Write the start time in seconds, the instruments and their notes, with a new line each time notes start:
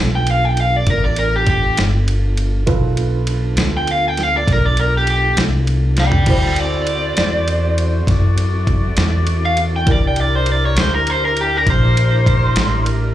Already playing: upright bass B1, tonewheel organ B3 D4 F4 A4, upright piano F4 A4 B4
0.15 overdriven electric guitar G5
0.27 ride
0.31 overdriven electric guitar F5
0.45 overdriven electric guitar G5
0.57 overdriven electric guitar F5, ride
0.76 overdriven electric guitar D5
0.86 upright bass A1, overdriven electric guitar A#4, kick, ride
1.04 overdriven electric guitar D5
1.16 overdriven electric guitar A#4, ride
1.36 overdriven electric guitar G4
1.47 overdriven electric guitar G4, kick, ride
1.77 upright bass G1, snare, ride
2.08 ride
2.37 ride
2.66 upright bass B1, tonewheel organ C4 D#4 F#4 A#4, upright piano F4 A4 B4, kick, ride
2.97 tonewheel organ B3 D4 F4 A4, ride
3.27 ride
3.56 upright bass D2, snare, ride
3.77 overdriven electric guitar G5
3.87 overdriven electric guitar F5, ride
4.08 overdriven electric guitar G5
4.17 snare, ride
4.23 overdriven electric guitar F5
4.37 overdriven electric guitar D5
4.47 upright bass B1, kick, snare, ride
4.52 overdriven electric guitar A#4
4.66 overdriven electric guitar D5
4.77 overdriven electric guitar A#4, ride
4.97 overdriven electric guitar G4
5.07 overdriven electric guitar G4, ride
5.37 upright bass C2, snare, ride
5.67 ride
5.97 overdriven electric guitar D5 G5, snare, ride
6.12 floor tom
6.26 upright bass D2, tonewheel organ C4 E4 F#4 A4, horn section E4 F#4 C5, upright piano E4 F#4 C5, overdriven electric guitar D5 G5, kick, ride, crash
6.56 overdriven electric guitar D5, ride
6.87 ride
7.17 upright bass E2, snare, ride
7.48 ride
7.78 ride
8.07 upright bass F#2, horn section D5, kick, snare, ride
8.38 ride
8.67 kick, ride
8.97 upright bass E2, snare, ride
9.27 ride
9.45 overdriven electric guitar F5
9.57 ride
9.76 overdriven electric guitar G5
9.86 upright bass C2, tonewheel organ D4 E4 G4 A#4, horn section D4 A#4, upright piano E4 A#4 D5, kick, ride
9.92 overdriven electric guitar D5
10.07 overdriven electric guitar G5
10.16 ride
10.21 overdriven electric guitar D5
10.35 overdriven electric guitar C5
10.46 ride
10.52 overdriven electric guitar D5
10.65 overdriven electric guitar C#5
10.75 upright bass D2, snare, ride
10.80 overdriven electric guitar C5
10.95 overdriven electric guitar A#4
11.07 overdriven electric guitar C5, ride
11.25 overdriven electric guitar A#4
11.37 ride
11.41 overdriven electric guitar G4
11.57 overdriven electric guitar A#4
11.66 upright bass A#1, overdriven electric guitar C5, kick, ride
11.97 ride
12.26 kick, ride
12.55 upright bass A1, snare, ride
12.86 ride